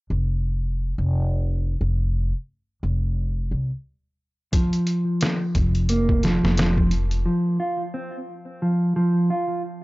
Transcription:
0, 0, Header, 1, 4, 480
1, 0, Start_track
1, 0, Tempo, 681818
1, 1271, Time_signature, 4, 2, 24, 8
1, 6926, End_track
2, 0, Start_track
2, 0, Title_t, "Clean electric guitar"
2, 0, Program_c, 0, 27
2, 3190, Note_on_c, 0, 53, 66
2, 4130, Note_off_c, 0, 53, 0
2, 4151, Note_on_c, 0, 58, 69
2, 4371, Note_off_c, 0, 58, 0
2, 4392, Note_on_c, 0, 53, 86
2, 4611, Note_off_c, 0, 53, 0
2, 4631, Note_on_c, 0, 53, 88
2, 4861, Note_off_c, 0, 53, 0
2, 5108, Note_on_c, 0, 53, 69
2, 5329, Note_off_c, 0, 53, 0
2, 5349, Note_on_c, 0, 65, 69
2, 5504, Note_off_c, 0, 65, 0
2, 5589, Note_on_c, 0, 60, 64
2, 5744, Note_off_c, 0, 60, 0
2, 6069, Note_on_c, 0, 53, 75
2, 6290, Note_off_c, 0, 53, 0
2, 6309, Note_on_c, 0, 53, 89
2, 6540, Note_off_c, 0, 53, 0
2, 6549, Note_on_c, 0, 65, 70
2, 6770, Note_off_c, 0, 65, 0
2, 6926, End_track
3, 0, Start_track
3, 0, Title_t, "Upright bass"
3, 0, Program_c, 1, 32
3, 71, Note_on_c, 1, 29, 84
3, 665, Note_off_c, 1, 29, 0
3, 691, Note_on_c, 1, 29, 80
3, 1252, Note_off_c, 1, 29, 0
3, 1273, Note_on_c, 1, 29, 81
3, 1625, Note_off_c, 1, 29, 0
3, 1992, Note_on_c, 1, 29, 87
3, 2452, Note_off_c, 1, 29, 0
3, 2473, Note_on_c, 1, 36, 68
3, 2596, Note_off_c, 1, 36, 0
3, 3909, Note_on_c, 1, 29, 89
3, 4503, Note_off_c, 1, 29, 0
3, 4532, Note_on_c, 1, 29, 86
3, 5092, Note_off_c, 1, 29, 0
3, 6926, End_track
4, 0, Start_track
4, 0, Title_t, "Drums"
4, 3188, Note_on_c, 9, 42, 81
4, 3189, Note_on_c, 9, 36, 93
4, 3259, Note_off_c, 9, 36, 0
4, 3259, Note_off_c, 9, 42, 0
4, 3329, Note_on_c, 9, 42, 39
4, 3400, Note_off_c, 9, 42, 0
4, 3426, Note_on_c, 9, 42, 57
4, 3497, Note_off_c, 9, 42, 0
4, 3667, Note_on_c, 9, 42, 74
4, 3679, Note_on_c, 9, 38, 92
4, 3737, Note_off_c, 9, 42, 0
4, 3749, Note_off_c, 9, 38, 0
4, 3906, Note_on_c, 9, 42, 61
4, 3908, Note_on_c, 9, 36, 88
4, 3977, Note_off_c, 9, 42, 0
4, 3978, Note_off_c, 9, 36, 0
4, 4047, Note_on_c, 9, 42, 38
4, 4117, Note_off_c, 9, 42, 0
4, 4146, Note_on_c, 9, 42, 81
4, 4216, Note_off_c, 9, 42, 0
4, 4288, Note_on_c, 9, 36, 84
4, 4358, Note_off_c, 9, 36, 0
4, 4387, Note_on_c, 9, 42, 60
4, 4399, Note_on_c, 9, 38, 38
4, 4457, Note_off_c, 9, 42, 0
4, 4469, Note_off_c, 9, 38, 0
4, 4539, Note_on_c, 9, 38, 51
4, 4609, Note_off_c, 9, 38, 0
4, 4628, Note_on_c, 9, 42, 78
4, 4640, Note_on_c, 9, 38, 94
4, 4699, Note_off_c, 9, 42, 0
4, 4711, Note_off_c, 9, 38, 0
4, 4768, Note_on_c, 9, 36, 85
4, 4839, Note_off_c, 9, 36, 0
4, 4866, Note_on_c, 9, 42, 58
4, 4936, Note_off_c, 9, 42, 0
4, 5006, Note_on_c, 9, 42, 40
4, 5077, Note_off_c, 9, 42, 0
4, 6926, End_track
0, 0, End_of_file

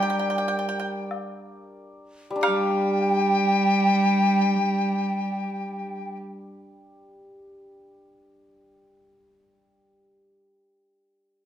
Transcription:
0, 0, Header, 1, 7, 480
1, 0, Start_track
1, 0, Tempo, 1247401
1, 426, Tempo, 1318681
1, 910, Time_signature, 4, 2, 24, 8
1, 2346, Tempo, 1357466
1, 4139, End_track
2, 0, Start_track
2, 0, Title_t, "Dizi"
2, 0, Program_c, 0, 73
2, 0, Note_on_c, 0, 79, 114
2, 426, Note_off_c, 0, 79, 0
2, 898, Note_on_c, 0, 79, 101
2, 2271, Note_off_c, 0, 79, 0
2, 4139, End_track
3, 0, Start_track
3, 0, Title_t, "Pipa"
3, 0, Program_c, 1, 105
3, 9, Note_on_c, 1, 79, 66
3, 33, Note_off_c, 1, 79, 0
3, 38, Note_on_c, 1, 79, 74
3, 70, Note_off_c, 1, 79, 0
3, 75, Note_on_c, 1, 79, 63
3, 111, Note_off_c, 1, 79, 0
3, 115, Note_on_c, 1, 79, 73
3, 141, Note_off_c, 1, 79, 0
3, 146, Note_on_c, 1, 79, 61
3, 180, Note_off_c, 1, 79, 0
3, 185, Note_on_c, 1, 79, 73
3, 221, Note_off_c, 1, 79, 0
3, 226, Note_on_c, 1, 79, 62
3, 260, Note_off_c, 1, 79, 0
3, 264, Note_on_c, 1, 79, 74
3, 301, Note_off_c, 1, 79, 0
3, 306, Note_on_c, 1, 79, 63
3, 342, Note_off_c, 1, 79, 0
3, 906, Note_on_c, 1, 77, 88
3, 1158, Note_off_c, 1, 77, 0
3, 1158, Note_on_c, 1, 78, 88
3, 1311, Note_off_c, 1, 78, 0
3, 1311, Note_on_c, 1, 79, 88
3, 2279, Note_off_c, 1, 79, 0
3, 4139, End_track
4, 0, Start_track
4, 0, Title_t, "Xiao"
4, 0, Program_c, 2, 77
4, 0, Note_on_c, 2, 79, 121
4, 408, Note_off_c, 2, 79, 0
4, 902, Note_on_c, 2, 79, 84
4, 2274, Note_off_c, 2, 79, 0
4, 4139, End_track
5, 0, Start_track
5, 0, Title_t, "Hammered dulcimer"
5, 0, Program_c, 3, 15
5, 0, Note_on_c, 3, 55, 68
5, 0, Note_on_c, 3, 62, 56
5, 0, Note_on_c, 3, 67, 51
5, 0, Note_on_c, 3, 70, 51
5, 0, Note_on_c, 3, 74, 56
5, 180, Note_off_c, 3, 62, 0
5, 421, Note_off_c, 3, 55, 0
5, 424, Note_off_c, 3, 67, 0
5, 665, Note_off_c, 3, 70, 0
5, 862, Note_on_c, 3, 55, 52
5, 881, Note_on_c, 3, 62, 49
5, 901, Note_on_c, 3, 67, 51
5, 910, Note_off_c, 3, 74, 0
5, 2828, Note_off_c, 3, 67, 0
5, 3166, Note_off_c, 3, 62, 0
5, 3764, Note_off_c, 3, 55, 0
5, 4139, End_track
6, 0, Start_track
6, 0, Title_t, "Cello"
6, 0, Program_c, 4, 42
6, 0, Note_on_c, 4, 55, 107
6, 427, Note_off_c, 4, 55, 0
6, 907, Note_on_c, 4, 55, 104
6, 2279, Note_off_c, 4, 55, 0
6, 4139, End_track
7, 0, Start_track
7, 0, Title_t, "Drums"
7, 427, Note_on_c, 9, 77, 49
7, 463, Note_off_c, 9, 77, 0
7, 908, Note_on_c, 9, 76, 81
7, 944, Note_off_c, 9, 76, 0
7, 4139, End_track
0, 0, End_of_file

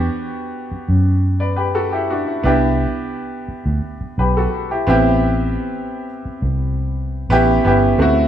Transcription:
0, 0, Header, 1, 4, 480
1, 0, Start_track
1, 0, Tempo, 694444
1, 1685, Time_signature, 4, 2, 24, 8
1, 5722, End_track
2, 0, Start_track
2, 0, Title_t, "Grand piano"
2, 0, Program_c, 0, 0
2, 0, Control_c, 0, 64, 127
2, 0, Note_on_c, 0, 59, 80
2, 0, Note_on_c, 0, 62, 74
2, 0, Note_on_c, 0, 66, 76
2, 0, Note_on_c, 0, 67, 85
2, 580, Note_off_c, 0, 59, 0
2, 581, Note_off_c, 0, 62, 0
2, 584, Note_off_c, 0, 66, 0
2, 587, Note_off_c, 0, 67, 0
2, 968, Note_on_c, 0, 74, 58
2, 973, Note_on_c, 0, 71, 46
2, 1071, Note_off_c, 0, 71, 0
2, 1081, Note_off_c, 0, 74, 0
2, 1081, Note_on_c, 0, 71, 65
2, 1086, Note_on_c, 0, 67, 56
2, 1197, Note_off_c, 0, 71, 0
2, 1200, Note_off_c, 0, 67, 0
2, 1208, Note_on_c, 0, 69, 76
2, 1211, Note_on_c, 0, 66, 64
2, 1321, Note_off_c, 0, 69, 0
2, 1322, Note_off_c, 0, 66, 0
2, 1329, Note_on_c, 0, 67, 61
2, 1333, Note_on_c, 0, 64, 58
2, 1441, Note_off_c, 0, 67, 0
2, 1443, Note_off_c, 0, 64, 0
2, 1454, Note_on_c, 0, 66, 61
2, 1460, Note_on_c, 0, 62, 51
2, 1564, Note_off_c, 0, 66, 0
2, 1566, Note_on_c, 0, 64, 55
2, 1567, Note_off_c, 0, 62, 0
2, 1682, Note_on_c, 0, 59, 84
2, 1686, Note_off_c, 0, 64, 0
2, 1694, Control_c, 0, 64, 0
2, 1694, Note_on_c, 0, 62, 75
2, 1696, Note_on_c, 0, 64, 72
2, 1702, Note_on_c, 0, 67, 82
2, 1816, Control_c, 0, 64, 127
2, 2507, Note_off_c, 0, 59, 0
2, 2513, Note_off_c, 0, 62, 0
2, 2514, Note_off_c, 0, 64, 0
2, 2516, Note_off_c, 0, 67, 0
2, 2896, Note_on_c, 0, 71, 65
2, 2902, Note_on_c, 0, 67, 51
2, 3005, Note_off_c, 0, 71, 0
2, 3008, Note_off_c, 0, 67, 0
2, 3020, Note_on_c, 0, 69, 68
2, 3024, Note_on_c, 0, 66, 56
2, 3241, Note_off_c, 0, 69, 0
2, 3243, Note_off_c, 0, 66, 0
2, 3256, Note_on_c, 0, 67, 64
2, 3257, Note_on_c, 0, 64, 54
2, 3363, Note_off_c, 0, 64, 0
2, 3364, Note_on_c, 0, 59, 89
2, 3371, Note_on_c, 0, 60, 79
2, 3373, Control_c, 0, 64, 0
2, 3373, Note_on_c, 0, 64, 81
2, 3374, Note_off_c, 0, 67, 0
2, 3384, Note_on_c, 0, 67, 95
2, 3494, Control_c, 0, 64, 127
2, 4188, Note_off_c, 0, 59, 0
2, 4192, Note_off_c, 0, 60, 0
2, 4193, Note_off_c, 0, 64, 0
2, 4198, Note_off_c, 0, 67, 0
2, 5046, Note_on_c, 0, 59, 99
2, 5051, Note_on_c, 0, 61, 85
2, 5054, Note_on_c, 0, 64, 81
2, 5055, Control_c, 0, 64, 0
2, 5061, Note_on_c, 0, 67, 105
2, 5180, Control_c, 0, 64, 127
2, 5252, Note_off_c, 0, 59, 0
2, 5255, Note_off_c, 0, 61, 0
2, 5256, Note_off_c, 0, 64, 0
2, 5260, Note_off_c, 0, 67, 0
2, 5285, Note_on_c, 0, 59, 86
2, 5290, Note_on_c, 0, 61, 75
2, 5293, Note_on_c, 0, 64, 74
2, 5303, Note_on_c, 0, 67, 90
2, 5492, Note_off_c, 0, 59, 0
2, 5494, Note_off_c, 0, 61, 0
2, 5496, Note_off_c, 0, 64, 0
2, 5501, Note_off_c, 0, 67, 0
2, 5522, Note_on_c, 0, 57, 83
2, 5527, Note_on_c, 0, 60, 71
2, 5534, Note_on_c, 0, 64, 73
2, 5535, Control_c, 0, 64, 0
2, 5542, Note_on_c, 0, 66, 91
2, 5641, Control_c, 0, 64, 127
2, 5722, Note_off_c, 0, 57, 0
2, 5722, Note_off_c, 0, 60, 0
2, 5722, Note_off_c, 0, 64, 0
2, 5722, Note_off_c, 0, 66, 0
2, 5722, End_track
3, 0, Start_track
3, 0, Title_t, "Fingered electric bass"
3, 0, Program_c, 1, 33
3, 612, Note_on_c, 1, 42, 74
3, 1541, Note_off_c, 1, 42, 0
3, 1687, Note_on_c, 1, 36, 105
3, 1972, Note_off_c, 1, 36, 0
3, 2527, Note_on_c, 1, 38, 84
3, 2622, Note_off_c, 1, 38, 0
3, 2888, Note_on_c, 1, 35, 91
3, 3077, Note_off_c, 1, 35, 0
3, 3367, Note_on_c, 1, 33, 83
3, 3842, Note_off_c, 1, 33, 0
3, 4439, Note_on_c, 1, 36, 89
3, 5015, Note_off_c, 1, 36, 0
3, 5042, Note_on_c, 1, 33, 93
3, 5234, Note_off_c, 1, 33, 0
3, 5287, Note_on_c, 1, 31, 80
3, 5477, Note_off_c, 1, 31, 0
3, 5519, Note_on_c, 1, 38, 103
3, 5722, Note_off_c, 1, 38, 0
3, 5722, End_track
4, 0, Start_track
4, 0, Title_t, "Muted fingered electric bass strokes"
4, 494, Note_on_c, 9, 29, 43
4, 563, Note_off_c, 9, 29, 0
4, 2408, Note_on_c, 9, 29, 43
4, 2477, Note_off_c, 9, 29, 0
4, 2769, Note_on_c, 9, 29, 48
4, 2838, Note_off_c, 9, 29, 0
4, 4322, Note_on_c, 9, 29, 41
4, 4391, Note_off_c, 9, 29, 0
4, 5722, End_track
0, 0, End_of_file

